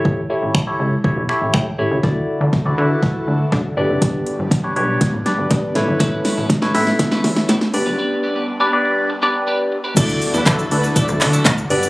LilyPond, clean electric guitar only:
\new Staff \with { instrumentName = "Clean electric guitar" } { \time 4/4 \key d \major \tempo 4 = 121 r1 | r1 | r1 | <a cis' e' b'>16 r16 <a cis' e' b'>16 <a cis' e' b'>16 r16 <a cis' e' b'>16 r8. <a cis' e' b'>16 r8 <a cis' e' b'>16 r8 <b d' g' b'>16 |
<b d' g' b'>16 r16 <b d' g' b'>16 <b d' g' b'>16 r16 <b d' g' b'>16 r4 <b d' g' b'>16 r16 <b d' g' b'>16 r8 <b d' g' b'>16 | <fis a e' a'>8 r16 <fis a e' a'>16 r4 <fis a e' a'>16 r8 <fis a e' a'>16 r4 | }